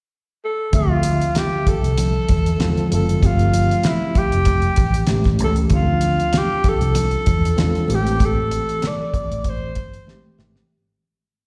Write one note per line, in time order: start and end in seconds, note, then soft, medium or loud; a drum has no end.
0.44 0.77 A4 medium
0.72 1.21 D2 medium
0.72 1.51 D3 medium
0.72 1.51 F3 medium
0.72 1.52 C4 medium
0.72 1.39 F4 medium
0.72 1.52 E5 medium
0.72 kick medium
0.72 closed hi-hat medium
0.72 muted conga soft
1.03 closed hi-hat medium
1.03 muted conga soft
1.21 closed hi-hat soft
1.35 1.70 G4 medium
1.35 snare medium
1.35 closed hi-hat medium
1.35 high conga medium
1.67 2.92 A4 medium
1.67 muted fingered electric bass stroke soft
1.67 kick medium
1.67 closed hi-hat medium
1.83 2.18 C2 medium
1.83 closed hi-hat soft
1.98 closed hi-hat medium
1.98 muted conga soft
1.98 low conga medium
2.28 2.53 E2 medium
2.28 kick medium
2.28 closed hi-hat medium
2.28 muted conga medium
2.46 closed hi-hat soft
2.58 2.80 D3 medium
2.58 2.80 F3 medium
2.58 2.80 C4 medium
2.58 2.81 F4 medium
2.58 snare loud
2.58 closed hi-hat medium
2.58 high conga medium
2.77 closed hi-hat soft
2.91 3.15 F#1 medium
2.91 3.11 D3 medium
2.91 3.12 F3 medium
2.91 3.12 C4 medium
2.91 3.13 F4 medium
2.91 3.27 A4 medium
2.91 closed hi-hat medium
2.91 high conga medium
3.09 closed hi-hat soft
3.21 3.70 G1 medium
3.21 3.99 F3 medium
3.21 4.00 A3 medium
3.21 4.00 C4 medium
3.21 4.01 G4 medium
3.21 kick medium
3.21 closed hi-hat medium
3.21 muted conga soft
3.25 3.88 F4 medium
3.39 closed hi-hat soft
3.54 closed hi-hat medium
3.54 muted conga soft
3.71 closed hi-hat soft
3.83 4.19 E4 medium
3.83 snare medium
3.83 closed hi-hat medium
3.83 high conga medium
4.15 5.15 G4 medium
4.15 muted fingered electric bass stroke soft
4.15 kick medium
4.15 closed hi-hat medium
4.32 4.67 F1 medium
4.32 closed hi-hat soft
4.45 kick medium
4.45 closed hi-hat medium
4.45 muted conga soft
4.62 closed hi-hat soft
4.76 5.02 A1 medium
4.76 kick medium
4.76 closed hi-hat medium
4.76 muted conga medium
4.94 closed hi-hat soft
5.07 5.40 A1 medium
5.07 5.28 E3 medium
5.07 5.29 A3 medium
5.07 5.29 C#4 medium
5.07 5.30 G4 medium
5.07 snare medium
5.07 closed hi-hat medium
5.07 high conga medium
5.24 kick medium
5.24 snare soft
5.24 closed hi-hat soft
5.39 5.64 C#2 medium
5.39 5.60 E3 medium
5.39 5.61 A3 medium
5.39 5.61 C#4 medium
5.39 5.61 G4 medium
5.39 closed hi-hat medium
5.39 high conga medium
5.43 5.57 A4 medium
5.56 closed hi-hat soft
5.70 6.18 D2 loud
5.70 6.49 F3 medium
5.70 6.49 C4 medium
5.70 6.50 D4 medium
5.70 6.50 F4 medium
5.70 kick medium
5.70 closed hi-hat medium
5.70 muted conga medium
5.75 6.39 F4 medium
6.01 closed hi-hat medium
6.20 closed hi-hat soft
6.33 snare medium
6.33 closed hi-hat medium
6.33 high conga medium
6.38 6.70 G4 medium
6.64 muted fingered electric bass stroke soft
6.64 kick medium
6.64 closed hi-hat medium
6.69 7.96 A4 medium
6.81 7.15 C2 medium
6.81 closed hi-hat soft
6.95 closed hi-hat medium
6.95 muted conga medium
6.95 low conga medium
7.11 closed hi-hat soft
7.26 7.51 E2 medium
7.26 kick medium
7.26 closed hi-hat medium
7.26 muted conga medium
7.45 closed hi-hat soft
7.56 7.77 E3 medium
7.56 7.77 C4 medium
7.56 7.78 D4 medium
7.56 7.78 F4 medium
7.56 snare medium
7.56 closed hi-hat medium
7.56 high conga medium
7.75 closed hi-hat soft
7.88 8.60 A1 medium
7.88 8.88 E3 medium
7.88 8.89 A3 medium
7.88 8.89 C4 medium
7.88 8.89 G4 medium
7.88 closed hi-hat medium
7.88 high conga medium
7.94 8.26 G4 medium
8.07 closed hi-hat soft
8.19 kick medium
8.19 closed hi-hat medium
8.19 muted conga soft
8.25 8.89 A4 loud
8.51 closed hi-hat medium
8.51 muted conga soft
8.69 closed hi-hat soft
8.82 snare medium
8.82 closed hi-hat medium
8.82 high conga medium
8.87 9.51 D5 loud
9.14 muted fingered electric bass stroke soft
9.14 kick medium
9.14 closed hi-hat medium
9.31 9.76 A1 medium
9.31 closed hi-hat soft
9.44 kick medium
9.44 closed hi-hat medium
9.44 muted conga soft
9.49 10.40 C5 medium
9.75 10.00 G1 medium
9.75 kick medium
9.75 closed hi-hat medium
9.75 muted conga medium
9.94 closed hi-hat soft
10.06 10.27 E3 medium
10.06 10.27 A3 medium
10.06 10.27 C4 medium
10.06 10.28 G4 medium
10.06 snare soft
10.06 high conga medium
10.38 10.62 G#1 medium
10.38 10.58 E3 medium
10.38 10.58 A3 medium
10.38 10.59 C4 medium
10.38 10.59 G4 medium
10.38 snare medium
10.38 high conga medium
10.56 snare medium